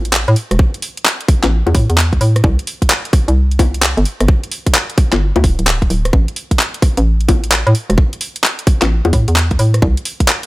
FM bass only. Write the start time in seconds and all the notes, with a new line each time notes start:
Already playing: A1
0.28 A2
0.51 E1
1.43 A1
1.67 E2
1.75 A2
1.90 E2
2.21 A2
2.44 C2
3.28 C2
3.97 G1
4.21 G1
5.13 G1
5.36 D2
5.44 D1
5.59 D1
5.90 D1
6.13 A1
6.97 A1
7.67 A2
7.90 E1
8.82 A1
9.05 E2
9.13 A2
9.28 E2
9.59 A2
9.82 C2